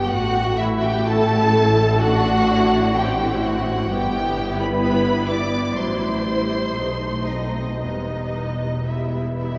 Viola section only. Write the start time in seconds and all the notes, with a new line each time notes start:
0.10 A3 F#4
1.06 E4
2.02 D4 F#4
2.50 E4
2.96 C4 E4
3.91 B3 E4
5.77 F#3 E4
6.26 G3
6.75 A3 D#4
7.29 C4
7.82 G3 B3
8.88 G3 B3